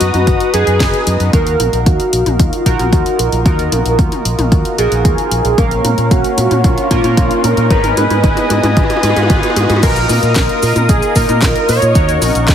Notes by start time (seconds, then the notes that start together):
Already playing: B3 D#4 F#4 B4 D#5 A#5 D#6
0.01 F#2, closed hi-hat
0.14 F#2, closed hi-hat, high tom
0.27 F#1, kick, closed hi-hat
0.40 closed hi-hat
0.54 F#2 B3 D#4 F#4 G#4 B4, closed hi-hat
0.67 F#2, closed hi-hat
0.80 F#1, kick, snare, closed hi-hat
0.94 closed hi-hat
1.07 F#2, closed hi-hat
1.20 F#2, closed hi-hat
1.33 D#2 D#4 F#4 A#4 F5 D#6, kick, closed hi-hat, mid tom, riser
1.47 closed hi-hat
1.60 A#1, closed hi-hat, high tom
1.73 A#1, closed hi-hat
1.86 D#2 F#4, kick, closed hi-hat, mid tom
2.00 closed hi-hat
2.13 A#1, closed hi-hat
2.26 A#1, closed hi-hat, high tom
2.39 D#2 F4, kick, closed hi-hat, mid tom
2.53 closed hi-hat
2.66 A#1 D#4 F4 F#4 A#4, kick, closed hi-hat
2.79 A#1, closed hi-hat, high tom
2.92 D#2 F#4, kick, closed hi-hat, mid tom
3.06 closed hi-hat
3.19 A#1 A#4, closed hi-hat
3.32 A#1, closed hi-hat
3.46 D#2 D#4 F4 F#4 A#4, kick, closed hi-hat, mid tom
3.59 closed hi-hat
3.72 A#1, closed hi-hat, high tom
3.85 A#1, closed hi-hat
3.99 D#2, kick, closed hi-hat, mid tom
4.12 closed hi-hat, high tom
4.25 A#1, closed hi-hat
4.39 A#1, closed hi-hat, high tom
4.52 D#2, kick, closed hi-hat, mid tom
4.65 closed hi-hat
4.78 A#1 D#4 F4 F#4 G#4 A#4, closed hi-hat
4.92 A#1, closed hi-hat
5.05 D#2, kick, closed hi-hat, mid tom
5.18 closed hi-hat
5.31 A#1, closed hi-hat
5.45 A#1, closed hi-hat
5.58 A#1 A#3 C#4 A#4 C#5 F5 C#6, kick, closed hi-hat, mid tom
5.71 closed hi-hat
5.85 A#2, closed hi-hat, mid tom, high tom
5.98 A#2, closed hi-hat
6.11 A#1 F#4, kick, closed hi-hat, mid tom
6.24 closed hi-hat
6.38 A#2, closed hi-hat, mid tom
6.51 A#2, closed hi-hat, high tom
6.64 A#1 F4, kick, closed hi-hat, mid tom
6.78 closed hi-hat
6.91 A#2 A#3 C#4 F4 A#4, kick, closed hi-hat, mid tom
7.04 A#2, closed hi-hat, high tom
7.17 A#1, kick, closed hi-hat, mid tom
7.31 closed hi-hat
7.44 A#2 A#4, closed hi-hat, mid tom
7.57 A#2, closed hi-hat
7.71 G#1 B3 D#4 G#4 A#4 B4 D#5 G#5 D#6, kick, closed hi-hat, mid tom
7.84 closed hi-hat, mid tom
7.97 G#2 B4, closed hi-hat, mid tom, high tom
8.10 G#2, closed hi-hat, mid tom
8.24 G#1, kick, closed hi-hat, mid tom
8.37 closed hi-hat, mid tom, high tom
8.50 G#2, closed hi-hat, mid tom
8.63 G#2, closed hi-hat, mid tom, high tom
8.77 G#1, kick, closed hi-hat, mid tom
8.83 mid tom
8.90 closed hi-hat, mid tom
8.97 mid tom
9.03 G#2 B3 D#4 G#4 B4, closed hi-hat, mid tom
9.10 mid tom
9.16 G#2, closed hi-hat, mid tom
9.23 mid tom
9.30 G#1, kick, closed hi-hat, mid tom
9.37 mid tom
9.43 closed hi-hat, mid tom
9.50 mid tom
9.56 G#2, closed hi-hat, mid tom
9.63 mid tom
9.70 G#2, closed hi-hat, mid tom
9.76 mid tom
9.83 A#1 A#3 D#4 F4 A#4 D#5 F5 D#6, kick, closed hi-hat, crash, cabasa
9.96 closed hi-hat, cabasa
10.09 A#2, open hi-hat, high tom, cabasa
10.23 A#2, closed hi-hat, cabasa
10.36 A#1 A#4, kick, snare, clap, closed hi-hat, cabasa
10.49 closed hi-hat
10.63 A#2, open hi-hat, cabasa
10.76 A#2, closed hi-hat, high tom, cabasa
10.89 A#1 G#4, kick, closed hi-hat, cabasa
11.02 closed hi-hat, cabasa
11.16 A#2 A#3 D#4 F4 A#4, kick, open hi-hat, cabasa
11.29 A#2, closed hi-hat, high tom, cabasa
11.42 A#1, kick, snare, clap, closed hi-hat, cabasa
11.56 closed hi-hat
11.69 A#2 C#5, open hi-hat, cabasa
11.82 A#2, closed hi-hat, cabasa
11.95 D#2 C#4 D#4 F#4 A#4 F#5 C#6, kick, closed hi-hat, cabasa
12.09 closed hi-hat, cabasa
12.22 A#1, open hi-hat, high tom, cabasa
12.35 A#1, closed hi-hat, cabasa
12.48 D#2, kick, snare, clap, closed hi-hat, cabasa